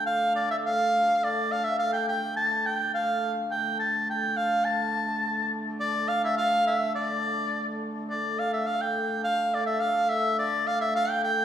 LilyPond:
<<
  \new Staff \with { instrumentName = "Shawm" } { \time 2/4 \key d \minor \tempo 4 = 105 f''8 d''16 e''16 f''4 | d''8 f''16 e''16 f''16 g''16 g''8 | a''8 g''8 f''8. r16 | g''8 a''8 g''8 f''8 |
a''4. r8 | d''8 f''16 e''16 f''8 e''8 | d''4. r8 | d''8 f''16 e''16 f''16 g''8. |
f''8 d''16 e''16 f''8 e''8 | d''8 f''16 e''16 f''16 g''16 g''8 | }
  \new Staff \with { instrumentName = "Hurdy-gurdy" } { \clef bass \time 2/4 \key d \minor <d a>2~ | <d a>2~ | <d a>2 | <d a>2~ |
<d a>2~ | <d a>2~ | <d a>2 | <d a>2~ |
<d a>2~ | <d a>2 | }
>>